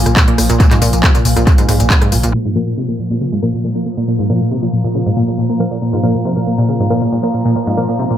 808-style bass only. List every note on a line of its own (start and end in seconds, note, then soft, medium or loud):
0.06 0.16 A#1 medium
0.38 0.49 A#1 loud
0.50 0.60 A#1 medium
0.82 0.92 A#1 loud
0.93 1.03 A#1 medium
1.25 1.36 A#1 loud
1.37 1.47 A#1 medium
1.69 1.79 A#1 loud
1.80 1.90 A#1 medium
2.12 2.23 A#1 loud
2.23 2.34 A#1 medium